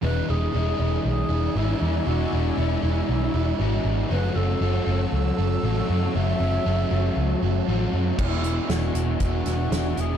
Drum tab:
CC |--------|--------|--------|--------|
HH |--------|--------|--------|--------|
SD |--------|--------|--------|--------|
BD |--------|--------|--------|--------|

CC |x-------|
HH |-xxxxxxx|
SD |--o--oo-|
BD |o---o---|